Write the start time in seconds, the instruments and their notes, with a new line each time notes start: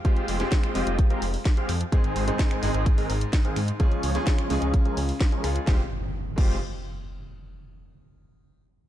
Already playing: grand piano G#3 C4 F4 G4
0.04 grand piano G#3 C4 F4 G4, supersaw synth G#3 C4 F4 G4 C5, kick, closed hi-hat
0.17 closed hi-hat
0.28 detuned saw bass F1, open hi-hat
0.39 grand piano G#3 C4 F4 G4, supersaw synth G#3 C4 F4 G4 C5, snare, closed hi-hat
0.52 kick, snare, closed hi-hat
0.63 finger snap, closed hi-hat
0.74 detuned saw bass F1, grand piano G#3 C4 F4 G4, supersaw synth G#3 C4 F4 G4 D#5, open hi-hat
0.87 detuned saw bass F1, closed hi-hat
0.99 kick, closed hi-hat
1.10 supersaw synth G#3 C4 F4 G4 A#4, closed hi-hat
1.22 detuned saw bass F1, open hi-hat
1.34 open hi-hat
1.45 kick, snare, closed hi-hat
1.57 supersaw synth G#3 C4 F4 G4 F5, closed hi-hat
1.69 detuned saw bass F2, finger snap, open hi-hat
1.81 closed hi-hat
1.92 grand piano G#2 G#3 C4 D#4 G#4, supersaw synth D#3 G#3 C4 G#4 C5, kick, closed hi-hat
2.04 closed hi-hat
2.16 detuned saw bass G#1, open hi-hat
2.27 grand piano G#2 G#3 C4 D#4 G#4, supersaw synth D#3 G#3 C4 G#4 C5, closed hi-hat
2.39 kick, snare, closed hi-hat
2.51 finger snap, closed hi-hat
2.62 detuned saw bass G#1, grand piano G#2 G#3 C4 D#4 G#4, supersaw synth D#3 G#3 C4 G#4 D#5, snare, open hi-hat
2.74 detuned saw bass G#1, closed hi-hat
2.86 kick, closed hi-hat
2.98 supersaw synth D#3 G#3 C4 G#4 A#4, open hi-hat
3.10 detuned saw bass G#1, open hi-hat
3.21 closed hi-hat
3.33 kick, snare, closed hi-hat
3.45 supersaw synth D#3 G#3 C4 G#4 F5, closed hi-hat
3.56 detuned saw bass G#2, finger snap, open hi-hat
3.68 closed hi-hat
3.79 grand piano C#3 G#3 C#4 F4 G#4, supersaw synth F3 G#3 C#4 G#4 C#5, kick, closed hi-hat
3.92 closed hi-hat
4.03 detuned saw bass C#2, open hi-hat
4.14 grand piano C#3 G#3 C#4 F4 G#4, supersaw synth F3 G#3 C#4 G#4 C#5, snare, closed hi-hat
4.27 kick, snare, closed hi-hat
4.39 finger snap, closed hi-hat
4.49 detuned saw bass C#2, grand piano C#3 G#3 C#4 F4 G#4, supersaw synth F3 G#3 C#4 G#4 D#5, open hi-hat
4.62 detuned saw bass C#2, closed hi-hat
4.74 kick, closed hi-hat
4.85 supersaw synth F3 G#3 C#4 G#4 A#4, closed hi-hat
4.97 detuned saw bass C#2, open hi-hat
5.09 open hi-hat
5.21 kick, snare, closed hi-hat
5.32 supersaw synth F3 G#3 C#4 G#4 A#4, closed hi-hat
5.43 detuned saw bass C#2, grand piano G#3 C#4 F4 G#4, finger snap, open hi-hat
5.56 closed hi-hat
5.66 detuned saw bass F1, grand piano G#3 C4 F4 G4, supersaw synth G#3 C4 F4 G4 C5, kick, snare, impact
6.36 detuned saw bass F1, grand piano G#3 C4 F4 G4, supersaw synth G#3 C4 F4 G4 C5, kick, crash